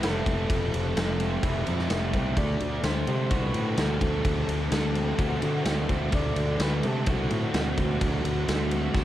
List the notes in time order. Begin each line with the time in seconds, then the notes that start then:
Already playing: C4 E4
0.02 F1 A3 A4, snare, ride
0.26 F1 C4 A4, kick, ride
0.49 F1 F3, kick, ride
0.73 F1 F3, ride
0.97 F1 A3, snare, ride
1.20 C4, ride
1.43 F1 E4, kick, ride
1.66 F2 C4, ride
1.79 snare
1.89 F1 A3, snare, ride
2.13 C2 C4, kick, ride
2.37 D2 D3 D5, kick, ride
2.60 D2 D3, ride
2.84 D2 A3 C5, snare, ride
3.07 C3 C4, ride
3.30 C2 F#4 B4, kick, ride
3.54 A2 C4, ride
3.77 D2 A3 A4, snare, ride
4.01 D2 C4 A4, kick, ride
4.25 D2 D3, kick, ride
4.48 D2 D3, ride
4.71 D2 A3, snare, ride
4.95 C4, ride
5.18 D2 F#4, kick, ride
5.42 D3 C4, ride
5.65 D2 A3, snare, ride
5.89 D2 C4, kick, ride
6.12 D2 D3 D5, kick, ride
6.36 D2 D3, ride
6.59 D2 A3 B4, snare, ride
6.83 C3 C4 A4, ride
7.06 C2 F#4, kick, ride
7.31 A2 C4, ride
7.54 D2 A3, snare, ride
7.78 D2 C4, kick, ride
8.01 D2 D3, kick, ride
8.25 D2 D3, ride
8.48 D2 A3, snare, ride
8.71 C4, ride
8.94 D2 F#4, kick, snare